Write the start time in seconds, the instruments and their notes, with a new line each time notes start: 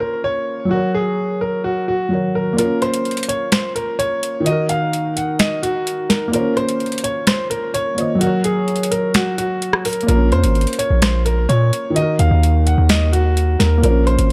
Already playing: felt piano A#3 C#4 F4 A#4
0.00 grand piano A#4
0.24 grand piano C#5
0.65 felt piano F#3 F#4
0.71 grand piano F#4, felt piano A#4
0.77 felt piano C#5
0.94 grand piano G#4
1.41 grand piano A#4
1.64 grand piano F#4
1.88 grand piano F#4
2.09 felt piano F#3 F#4 A#4
2.15 felt piano C#5
2.35 grand piano A#4
2.53 felt piano A#3 F4
2.58 grand piano A#4, felt piano A#4, closed hi-hat
2.64 felt piano C#4
2.82 grand piano C5, closed hi-hat
2.94 closed hi-hat
3.05 closed hi-hat
3.11 closed hi-hat
3.17 closed hi-hat
3.23 closed hi-hat
3.29 grand piano C#5, closed hi-hat
3.52 grand piano C5, finger snap, snare, closed hi-hat
3.75 grand piano A#4, closed hi-hat
3.99 grand piano C#5, closed hi-hat
4.23 closed hi-hat
4.40 felt piano D#3 D#4
4.46 felt piano F#4, grand piano D#5, closed hi-hat
4.52 felt piano A#4
4.69 grand piano F5, closed hi-hat
4.93 closed hi-hat
5.16 grand piano F#5, closed hi-hat
5.39 grand piano D#5, finger snap, snare, closed hi-hat
5.63 grand piano F#4, closed hi-hat
5.87 closed hi-hat
6.10 grand piano A#4, snare, closed hi-hat
6.28 felt piano A#3 F4
6.33 grand piano A#4, felt piano C5, closed hi-hat
6.39 felt piano C#4
6.57 grand piano C5, closed hi-hat
6.69 closed hi-hat
6.80 closed hi-hat
6.86 closed hi-hat
6.92 closed hi-hat
6.98 closed hi-hat
7.04 grand piano C#5, closed hi-hat
7.27 grand piano C5, finger snap, snare, closed hi-hat
7.50 grand piano A#4, closed hi-hat
7.74 grand piano C#5, closed hi-hat
7.95 felt piano A#3 F4 C5, closed hi-hat
8.00 felt piano D#5
8.15 felt piano F#3 F#4
8.21 grand piano F#4, felt piano A#4, closed hi-hat
8.27 felt piano C#5
8.44 grand piano G#4, closed hi-hat
8.68 closed hi-hat
8.76 closed hi-hat
8.83 closed hi-hat
8.91 grand piano A#4, closed hi-hat
9.14 grand piano F#4, finger snap, snare, closed hi-hat
9.38 grand piano F#4, closed hi-hat
9.62 closed hi-hat
9.73 cross-stick
9.85 grand piano A#4, closed hi-hat, open hi-hat
9.93 closed hi-hat
10.01 felt piano A#3, closed hi-hat
10.07 808-style bass A#1, felt piano F4 A#4, grand piano A#4, closed hi-hat
10.14 felt piano C#4
10.32 808-style bass F2, grand piano C5, closed hi-hat
10.44 808-style bass G#1, closed hi-hat
10.55 closed hi-hat
10.61 closed hi-hat
10.67 closed hi-hat
10.73 closed hi-hat
10.79 grand piano C#5, closed hi-hat
10.90 808-style bass A#1
11.02 grand piano C5, finger snap, snare, closed hi-hat
11.26 grand piano A#4, closed hi-hat
11.49 808-style bass A#2, grand piano C#5, closed hi-hat
11.73 closed hi-hat
11.90 felt piano D#3 D#4
11.96 felt piano F#4, grand piano D#5, closed hi-hat
12.02 felt piano A#4
12.19 808-style bass D#2, grand piano F5, closed hi-hat
12.31 808-style bass D#2
12.43 closed hi-hat
12.67 grand piano F#5, closed hi-hat
12.78 808-style bass D#2
12.89 grand piano D#5, finger snap, snare, closed hi-hat
13.13 grand piano F#4, closed hi-hat
13.37 closed hi-hat
13.59 808-style bass D#2, grand piano A#4, snare, closed hi-hat
13.78 felt piano A#3 F4
13.83 808-style bass A#1, grand piano A#4, felt piano C5, closed hi-hat
13.89 felt piano C#4
14.07 grand piano C5, closed hi-hat
14.19 808-style bass G#1, closed hi-hat